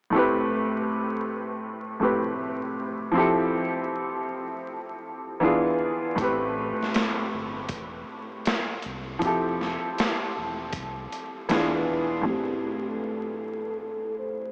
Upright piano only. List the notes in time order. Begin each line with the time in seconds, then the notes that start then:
0.10 A2 A3
0.15 C4 G4 B4
2.00 A2 A3 C4 G4 B4
3.12 F3 C4 E4
3.17 G4 A4
5.40 E3 B3 D4 F4 G#4
6.16 A2 A3 C4
6.21 G4 B4
9.19 F3 C4 E4
9.25 G4 A4
11.49 E3 B3 D4 F4 G#4
12.21 A2 A3 C4
12.27 G4 C5